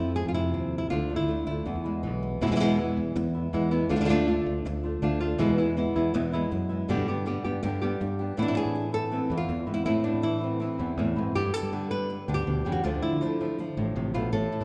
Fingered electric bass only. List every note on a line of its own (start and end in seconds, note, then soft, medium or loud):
0.00 0.21 F2 medium
0.26 0.54 F2 medium
0.54 0.85 D#2 medium
0.92 1.15 D2 medium
1.20 1.43 D2 medium
1.48 1.63 D2 medium
1.66 1.74 E2 medium
1.76 2.05 E2 medium
2.04 2.35 B1 medium
2.41 2.49 E2 medium
2.50 2.89 E2 medium
2.97 3.13 E2 medium
3.16 3.47 E2 medium
3.53 3.84 E2 medium
3.90 3.98 D2 medium
4.00 4.38 D2 medium
4.46 4.62 D2 medium
4.65 4.96 D2 medium
5.03 5.33 D2 loud
5.40 5.47 E2 medium
5.49 5.87 E2 medium
5.96 6.11 E2 medium
6.14 6.45 E2 loud
6.52 6.82 F#2 medium
6.89 6.97 G2 medium
6.98 7.36 G2 medium
7.45 7.60 G2 medium
7.64 7.94 G2 medium
8.01 8.31 G2 medium
8.38 8.53 A2 medium
8.65 9.19 A2 medium
9.30 9.46 E2 medium
9.49 9.64 E2 medium
9.67 9.83 G#2 medium
9.86 10.01 A2 medium
10.14 10.68 A2 medium
10.79 10.95 E2 medium
10.98 11.13 E2 loud
11.16 11.32 A2 medium
11.36 11.51 G2 medium
11.63 12.17 G3 medium
12.28 12.44 D2 medium
12.47 12.62 D2 medium
12.66 12.81 E2 medium
12.84 13.00 D2 medium
13.12 13.66 D3 medium
13.77 13.93 A1 medium
13.96 14.11 A1 medium
14.14 14.30 A#1 medium
14.33 14.48 A1 medium
14.60 14.64 A2 medium